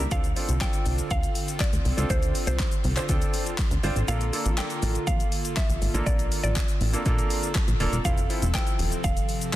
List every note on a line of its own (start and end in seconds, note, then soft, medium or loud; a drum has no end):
0.00 8.01 D3 medium
0.11 0.34 D2 loud
0.11 0.25 C4 medium
0.11 4.04 C4 medium
0.11 0.25 D4 medium
0.11 0.25 F4 medium
0.11 8.01 F4 medium
0.11 9.56 A4 medium
0.11 0.25 A4 loud
0.11 0.63 F5 loud
0.11 kick loud
0.11 closed hi-hat medium
0.11 shaker medium
0.24 closed hi-hat medium
0.24 shaker medium
0.36 0.49 C4 medium
0.36 0.50 D4 medium
0.36 0.50 F4 medium
0.36 0.50 A4 medium
0.36 open hi-hat medium
0.36 shaker medium
0.49 0.64 C2 medium
0.49 closed hi-hat medium
0.49 shaker medium
0.61 1.14 C4 medium
0.61 1.14 D4 medium
0.61 1.14 F4 medium
0.61 1.14 A4 medium
0.61 1.12 G5 loud
0.61 kick loud
0.61 snare medium
0.61 clap loud
0.61 closed hi-hat medium
0.61 shaker medium
0.73 closed hi-hat medium
0.73 shaker medium
0.86 1.01 C2 medium
0.86 open hi-hat medium
0.86 shaker medium
0.98 closed hi-hat medium
0.98 shaker medium
1.11 1.26 D2 loud
1.11 1.62 F5 loud
1.11 kick loud
1.11 closed hi-hat medium
1.11 shaker medium
1.23 closed hi-hat medium
1.23 shaker medium
1.35 open hi-hat medium
1.35 shaker medium
1.48 closed hi-hat medium
1.48 shaker medium
1.60 2.12 D5 medium
1.60 kick loud
1.60 snare medium
1.60 clap loud
1.60 closed hi-hat medium
1.60 shaker medium
1.73 1.80 D2 medium
1.73 closed hi-hat medium
1.73 shaker medium
1.85 1.93 C2 medium
1.85 open hi-hat medium
1.85 shaker soft
1.97 2.05 C#2 medium
1.97 2.50 C4 medium
1.97 2.50 D4 medium
1.97 2.51 F4 medium
1.97 2.51 A4 medium
1.97 closed hi-hat medium
1.97 shaker medium
2.10 2.33 D2 loud
2.10 2.45 C5 medium
2.10 kick loud
2.10 closed hi-hat medium
2.10 shaker medium
2.23 closed hi-hat medium
2.23 shaker medium
2.35 open hi-hat medium
2.35 shaker medium
2.47 2.62 C2 loud
2.47 3.42 C5 medium
2.47 closed hi-hat medium
2.47 shaker medium
2.59 kick loud
2.59 snare medium
2.59 clap loud
2.59 closed hi-hat medium
2.59 shaker medium
2.72 closed hi-hat medium
2.72 shaker medium
2.84 3.00 C2 loud
2.84 open hi-hat medium
2.84 shaker medium
2.97 3.03 C4 medium
2.97 3.03 D4 medium
2.97 3.03 F4 medium
2.97 3.04 C5 medium
2.97 clap medium
2.97 closed hi-hat medium
2.97 shaker medium
3.09 3.24 D2 medium
3.09 3.49 C4 medium
3.09 3.49 D4 medium
3.09 3.49 F4 medium
3.09 3.49 A4 loud
3.09 kick loud
3.09 closed hi-hat medium
3.09 shaker medium
3.22 closed hi-hat medium
3.22 shaker medium
3.34 open hi-hat medium
3.34 shaker medium
3.46 closed hi-hat medium
3.46 shaker medium
3.58 kick loud
3.58 snare medium
3.58 clap loud
3.58 closed hi-hat medium
3.58 shaker medium
3.71 3.79 D2 medium
3.71 closed hi-hat medium
3.71 shaker medium
3.83 3.91 G#1 medium
3.83 3.97 C4 loud
3.83 3.97 D4 medium
3.83 3.97 F4 loud
3.83 3.97 C5 loud
3.83 open hi-hat medium
3.83 shaker soft
3.96 4.04 A1 medium
3.96 closed hi-hat soft
3.96 shaker medium
4.08 4.31 A#1 loud
4.08 4.21 A#3 medium
4.08 6.05 A#3 medium
4.08 4.22 D4 medium
4.08 4.22 F4 medium
4.08 4.22 A4 medium
4.08 4.54 F5 loud
4.08 closed hi-hat medium
4.08 shaker medium
4.21 closed hi-hat medium
4.21 shaker medium
4.33 4.46 A#3 medium
4.33 4.46 D4 medium
4.33 4.46 F4 medium
4.33 4.46 A4 medium
4.33 open hi-hat medium
4.33 shaker medium
4.46 4.61 A1 medium
4.46 closed hi-hat medium
4.46 shaker medium
4.58 5.11 A#3 medium
4.58 5.11 D4 medium
4.58 5.11 F4 medium
4.58 5.11 A4 medium
4.58 5.09 G5 loud
4.58 snare medium
4.58 clap loud
4.58 closed hi-hat medium
4.58 shaker medium
4.70 closed hi-hat medium
4.70 shaker medium
4.82 4.98 A1 loud
4.82 open hi-hat medium
4.82 shaker medium
4.95 closed hi-hat medium
4.95 shaker medium
5.07 5.23 A#1 medium
5.07 5.53 F5 loud
5.07 kick loud
5.07 closed hi-hat medium
5.07 shaker medium
5.20 closed hi-hat medium
5.20 shaker medium
5.32 open hi-hat medium
5.32 shaker medium
5.45 closed hi-hat medium
5.45 shaker medium
5.57 6.03 E5 medium
5.57 kick loud
5.57 snare medium
5.57 clap loud
5.57 closed hi-hat medium
5.57 shaker medium
5.69 5.77 A#1 medium
5.69 closed hi-hat medium
5.69 shaker medium
5.82 5.89 G#1 medium
5.82 open hi-hat medium
5.82 shaker soft
5.94 6.02 A1 medium
5.94 6.47 A#3 medium
5.94 6.47 D4 medium
5.94 6.47 F4 medium
5.94 6.47 A4 medium
5.94 closed hi-hat medium
5.94 shaker medium
6.06 6.30 A#1 loud
6.06 8.03 C4 medium
6.06 6.42 D5 medium
6.06 kick loud
6.06 closed hi-hat medium
6.06 shaker medium
6.19 closed hi-hat medium
6.19 shaker medium
6.32 open hi-hat medium
6.32 shaker medium
6.43 6.59 A1 medium
6.43 7.39 D5 medium
6.43 closed hi-hat medium
6.43 shaker medium
6.56 kick loud
6.56 snare medium
6.56 clap loud
6.56 closed hi-hat medium
6.56 shaker medium
6.68 closed hi-hat medium
6.68 shaker medium
6.81 6.96 A1 loud
6.81 open hi-hat medium
6.81 shaker soft
6.93 7.00 A#3 medium
6.93 7.00 D4 medium
6.93 7.00 F4 medium
6.93 7.00 A4 medium
6.93 closed hi-hat medium
6.93 shaker medium
7.06 7.21 A#1 loud
7.06 7.45 A#3 medium
7.06 7.45 D4 medium
7.06 7.46 F4 medium
7.06 7.46 A4 loud
7.06 kick loud
7.06 closed hi-hat medium
7.06 shaker medium
7.19 closed hi-hat medium
7.19 shaker medium
7.30 open hi-hat medium
7.30 shaker medium
7.43 closed hi-hat medium
7.43 shaker medium
7.55 kick loud
7.55 snare medium
7.55 clap loud
7.55 closed hi-hat medium
7.55 shaker medium
7.68 7.75 A#1 medium
7.68 closed hi-hat medium
7.68 shaker medium
7.80 7.88 D#1 loud
7.80 7.93 A#3 loud
7.80 7.93 D4 medium
7.80 7.93 F4 loud
7.80 7.94 A4 loud
7.80 open hi-hat medium
7.80 shaker soft
7.93 8.00 E1 medium
7.93 closed hi-hat medium
7.93 shaker medium
8.05 8.28 F1 loud
8.05 9.56 C3 medium
8.05 9.56 F3 medium
8.05 8.18 C4 medium
8.05 9.56 C4 medium
8.05 8.18 E4 medium
8.05 8.18 F4 medium
8.05 8.18 A4 medium
8.05 8.56 F5 loud
8.05 kick loud
8.05 closed hi-hat medium
8.05 shaker medium
8.18 closed hi-hat medium
8.18 shaker medium
8.30 8.43 C4 medium
8.30 8.43 E4 medium
8.30 8.43 F4 medium
8.30 8.43 A4 medium
8.30 open hi-hat medium
8.30 shaker medium
8.42 8.57 E1 medium
8.42 closed hi-hat medium
8.42 shaker medium
8.54 9.07 C4 medium
8.54 9.07 E4 medium
8.54 9.08 F4 medium
8.54 9.08 A4 medium
8.54 9.06 G5 loud
8.54 kick loud
8.54 snare medium
8.54 clap loud
8.54 closed hi-hat medium
8.54 shaker medium
8.67 closed hi-hat medium
8.67 shaker medium
8.79 8.95 E1 medium
8.79 open hi-hat medium
8.79 shaker medium
8.92 closed hi-hat medium
8.92 shaker medium
9.04 9.20 F1 loud
9.04 9.56 F5 loud
9.04 kick loud
9.04 closed hi-hat medium
9.04 shaker medium
9.17 closed hi-hat medium
9.17 shaker medium
9.29 open hi-hat medium
9.29 shaker medium
9.41 closed hi-hat medium
9.41 shaker medium